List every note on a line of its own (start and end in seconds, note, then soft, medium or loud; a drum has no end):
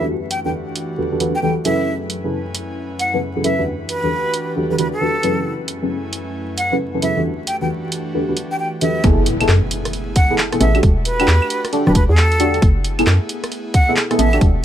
0.00 0.15 E3 medium
0.00 5.42 A3 medium
0.00 0.15 D4 medium
0.00 0.15 F#4 medium
0.00 0.15 G4 medium
0.00 0.15 A4 medium
0.00 1.84 B4 medium
0.00 0.15 B4 medium
0.08 1.86 E3 medium
0.08 1.86 D4 medium
0.08 1.86 F#4 medium
0.08 1.85 G4 medium
0.31 0.40 G5 medium
0.31 closed hi-hat medium
0.45 0.52 E3 medium
0.45 0.52 D4 medium
0.45 0.52 F#4 medium
0.45 0.52 G4 medium
0.45 0.52 A4 medium
0.45 0.52 B4 medium
0.45 0.50 G5 medium
0.76 closed hi-hat medium
0.98 1.09 E3 medium
0.98 1.09 D4 medium
0.98 1.09 F#4 medium
0.98 1.09 G4 medium
0.98 1.09 A4 medium
0.98 1.09 B4 medium
1.12 1.18 E3 medium
1.12 1.18 D4 medium
1.12 1.18 F#4 medium
1.12 1.18 G4 medium
1.12 1.18 A4 medium
1.12 1.18 B4 medium
1.20 1.33 E3 medium
1.20 1.33 D4 medium
1.20 1.33 F#4 medium
1.20 1.33 G4 medium
1.20 1.33 A4 medium
1.20 1.33 B4 loud
1.20 closed hi-hat medium
1.35 1.40 G5 medium
1.43 1.56 E3 medium
1.43 1.56 D4 medium
1.43 1.56 F#4 medium
1.43 1.56 G4 medium
1.43 1.56 A4 medium
1.43 1.56 B4 medium
1.43 1.52 G5 medium
1.65 2.21 F#3 loud
1.65 2.21 C#4 medium
1.65 2.21 E4 medium
1.65 2.21 G#4 medium
1.65 2.21 A4 medium
1.65 2.21 B4 loud
1.65 1.93 E5 medium
1.65 closed hi-hat loud
1.87 3.65 F#2 medium
1.87 3.65 C#4 medium
1.87 3.65 E4 medium
1.87 9.00 B4 medium
1.87 3.65 G#5 medium
2.10 closed hi-hat medium
2.24 2.39 F#3 medium
2.24 2.39 C#4 medium
2.24 2.39 E4 medium
2.24 2.39 G#4 medium
2.24 2.39 A4 medium
2.24 2.39 B4 medium
2.55 closed hi-hat loud
2.99 3.18 F#5 medium
2.99 closed hi-hat medium
3.14 3.21 F#3 medium
3.14 3.21 C#4 medium
3.14 3.21 E4 medium
3.14 3.21 G#4 medium
3.14 3.21 A4 medium
3.14 3.21 B4 medium
3.36 3.42 F#3 medium
3.36 3.42 C#4 medium
3.36 3.42 E4 medium
3.36 3.42 G#4 medium
3.36 3.42 A4 medium
3.36 3.42 B4 medium
3.44 3.55 F#3 medium
3.44 3.55 C#4 medium
3.44 3.55 E4 medium
3.44 3.55 G#4 medium
3.44 3.55 A4 medium
3.44 3.55 B4 loud
3.44 3.62 E5 medium
3.44 closed hi-hat loud
3.59 3.73 E3 medium
3.59 3.73 D4 medium
3.59 3.73 F#4 medium
3.59 3.73 G4 medium
3.59 3.73 A4 medium
3.59 3.73 B4 medium
3.66 5.44 E3 medium
3.66 5.44 D4 medium
3.66 5.44 F#4 medium
3.66 5.44 G4 medium
3.89 4.53 B4 medium
3.89 closed hi-hat loud
4.03 4.11 E3 medium
4.03 4.11 D4 medium
4.03 4.11 F#4 medium
4.03 4.11 G4 medium
4.03 4.11 A4 medium
4.03 4.11 B4 medium
4.34 closed hi-hat loud
4.56 4.67 E3 medium
4.56 4.67 D4 medium
4.56 4.67 F#4 medium
4.56 4.67 G4 medium
4.56 4.67 A4 medium
4.56 4.67 B4 medium
4.70 4.77 E3 medium
4.70 4.77 D4 medium
4.70 4.77 F#4 medium
4.70 4.77 G4 medium
4.70 4.77 A4 medium
4.70 4.77 B4 medium
4.70 4.76 B4 medium
4.78 4.92 E3 medium
4.78 4.92 D4 medium
4.78 4.92 F#4 medium
4.78 4.92 G4 medium
4.78 4.92 A4 medium
4.78 4.92 B4 loud
4.78 4.88 B4 medium
4.78 closed hi-hat loud
4.93 5.51 A4 medium
5.01 5.14 E3 medium
5.01 5.14 D4 medium
5.01 5.14 F#4 medium
5.01 5.14 G4 medium
5.01 5.14 A4 medium
5.01 5.14 B4 medium
5.23 5.79 F#3 loud
5.23 5.79 C#4 medium
5.23 5.79 E4 medium
5.23 5.79 G#4 medium
5.23 5.79 A4 medium
5.23 5.79 B4 loud
5.23 closed hi-hat loud
5.46 7.23 F#2 medium
5.46 7.23 A3 medium
5.46 7.23 C#4 medium
5.46 7.23 E4 medium
5.46 7.23 G#5 medium
5.68 closed hi-hat loud
5.82 5.97 F#3 medium
5.82 5.97 C#4 medium
5.82 5.97 E4 medium
5.82 5.97 G#4 medium
5.82 5.97 A4 medium
5.82 5.97 B4 medium
6.13 closed hi-hat loud
6.58 6.76 F#5 medium
6.58 closed hi-hat loud
6.72 6.79 F#3 medium
6.72 6.79 C#4 medium
6.72 6.79 E4 medium
6.72 6.79 G#4 medium
6.72 6.79 A4 medium
6.72 6.79 B4 medium
6.94 7.01 F#3 medium
6.94 7.00 C#4 medium
6.94 7.01 E4 medium
6.94 7.01 G#4 medium
6.94 7.00 A4 medium
6.94 7.01 B4 medium
7.02 7.13 F#3 medium
7.02 7.13 C#4 medium
7.02 7.13 E4 medium
7.02 7.13 G#4 medium
7.02 7.13 A4 medium
7.02 7.13 B4 loud
7.02 7.21 E5 medium
7.02 closed hi-hat loud
7.17 7.31 E3 medium
7.17 7.31 D4 medium
7.17 7.31 F#4 medium
7.17 7.31 G4 medium
7.17 7.31 A4 medium
7.17 7.31 B4 medium
7.25 9.02 E3 medium
7.25 9.02 A3 medium
7.25 9.02 D4 medium
7.25 9.02 F#4 medium
7.25 9.02 G4 medium
7.47 7.56 G5 medium
7.47 closed hi-hat loud
7.61 7.69 E3 medium
7.61 7.69 D4 medium
7.61 7.69 F#4 medium
7.61 7.69 G4 medium
7.61 7.69 A4 medium
7.61 7.69 B4 medium
7.61 7.67 G5 medium
7.92 closed hi-hat loud
8.14 8.25 E3 medium
8.14 8.25 D4 medium
8.14 8.25 F#4 medium
8.14 8.25 G4 medium
8.14 8.25 A4 medium
8.14 8.25 B4 medium
8.29 8.35 E3 medium
8.29 8.35 D4 medium
8.29 8.35 F#4 medium
8.29 8.35 G4 medium
8.29 8.35 A4 medium
8.29 8.35 B4 medium
8.37 closed hi-hat loud
8.51 8.56 G5 medium
8.59 8.68 G5 medium
8.81 9.00 E3 medium
8.81 9.00 D4 medium
8.81 9.00 F#4 medium
8.81 9.00 G4 medium
8.81 9.00 A4 medium
8.81 9.00 B4 loud
8.81 9.04 E5 medium
8.81 closed hi-hat loud
9.04 9.47 F#1 loud
9.04 12.59 A3 medium
9.04 9.35 B3 loud
9.04 10.81 B3 medium
9.04 10.81 E4 medium
9.04 9.35 E4 medium
9.04 9.35 G#4 medium
9.04 10.81 G#4 medium
9.04 9.35 A4 loud
9.04 kick loud
9.04 closed hi-hat medium
9.04 impact medium
9.26 closed hi-hat loud
9.41 9.55 B3 medium
9.41 9.55 E4 medium
9.41 9.55 G#4 medium
9.41 9.55 A4 medium
9.41 closed hi-hat medium
9.41 claves medium
9.49 9.61 F#2 medium
9.49 clap loud
9.71 closed hi-hat loud
9.85 cross-stick medium
9.85 closed hi-hat medium
9.93 closed hi-hat medium
10.16 10.34 F#5 medium
10.16 kick loud
10.16 closed hi-hat loud
10.30 10.38 B3 medium
10.30 10.38 E4 medium
10.30 10.38 G#4 medium
10.30 10.38 A4 loud
10.38 clap loud
10.52 10.59 B3 medium
10.52 10.59 E4 medium
10.52 10.59 G#4 medium
10.52 10.59 A4 medium
10.52 cross-stick medium
10.52 closed hi-hat medium
10.61 10.81 A1 loud
10.61 10.72 B3 loud
10.61 10.72 E4 medium
10.61 10.71 G#4 medium
10.61 10.72 A4 loud
10.61 10.79 E5 loud
10.61 cross-stick soft
10.61 closed hi-hat loud
10.75 10.90 D4 medium
10.75 10.90 F#4 medium
10.75 10.90 G4 medium
10.75 10.90 A4 loud
10.75 closed hi-hat soft
10.75 claves medium
10.83 11.26 E1 loud
10.83 12.60 D4 medium
10.83 12.60 F#4 medium
10.83 12.60 G4 medium
10.83 kick loud
10.83 closed hi-hat medium
11.05 11.69 B4 loud
11.05 closed hi-hat loud
11.20 11.27 D4 medium
11.20 11.27 F#4 medium
11.20 11.27 G4 medium
11.20 11.27 A4 medium
11.20 closed hi-hat medium
11.20 claves medium
11.28 11.40 E2 medium
11.28 clap loud
11.42 claves medium
11.50 closed hi-hat loud
11.65 cross-stick medium
11.65 closed hi-hat medium
11.73 11.83 D4 medium
11.73 11.83 F#4 medium
11.73 11.83 G4 medium
11.73 11.83 A4 medium
11.73 closed hi-hat medium
11.87 11.94 D1 loud
11.87 11.93 D4 medium
11.87 11.93 F#4 medium
11.87 11.93 G4 medium
11.87 11.93 A4 medium
11.87 11.92 B4 medium
11.87 cross-stick medium
11.95 12.07 E1 loud
11.95 12.04 B4 medium
11.95 kick loud
11.95 closed hi-hat loud
12.09 12.61 E2 loud
12.09 12.68 A4 loud
12.17 clap loud
12.32 closed hi-hat soft
12.40 12.58 D4 medium
12.40 12.58 F#4 medium
12.40 12.58 G4 medium
12.40 12.58 A4 loud
12.40 closed hi-hat loud
12.54 closed hi-hat soft
12.62 13.05 F#1 loud
12.62 14.65 A3 medium
12.62 14.39 B3 medium
12.62 14.39 E4 medium
12.62 14.40 G#4 medium
12.62 kick loud
12.62 closed hi-hat medium
12.85 closed hi-hat loud
12.99 13.13 B3 medium
12.99 13.13 E4 medium
12.99 13.13 G#4 medium
12.99 13.13 A4 medium
12.99 closed hi-hat medium
12.99 claves medium
13.07 13.19 F#2 medium
13.07 clap loud
13.29 closed hi-hat loud
13.44 cross-stick medium
13.44 closed hi-hat medium
13.52 closed hi-hat medium
13.74 13.92 F#5 medium
13.74 kick loud
13.74 closed hi-hat loud
13.88 13.96 B3 medium
13.88 13.96 E4 medium
13.88 13.96 G#4 medium
13.88 13.96 A4 medium
13.96 clap loud
14.11 14.17 B3 medium
14.11 14.17 E4 medium
14.11 14.17 G#4 medium
14.11 14.17 A4 medium
14.11 cross-stick medium
14.11 closed hi-hat soft
14.19 14.39 A1 loud
14.19 14.30 B3 loud
14.19 14.30 E4 medium
14.19 14.30 G#4 medium
14.19 14.30 A4 loud
14.19 14.37 E5 medium
14.19 cross-stick soft
14.19 closed hi-hat loud
14.33 14.48 D4 medium
14.33 14.48 F#4 medium
14.33 14.48 G4 medium
14.33 14.48 A4 loud
14.33 closed hi-hat soft
14.33 claves medium
14.41 14.65 E1 loud
14.41 14.65 D4 medium
14.41 14.65 F#4 medium
14.41 14.65 G4 medium
14.41 kick loud
14.41 closed hi-hat medium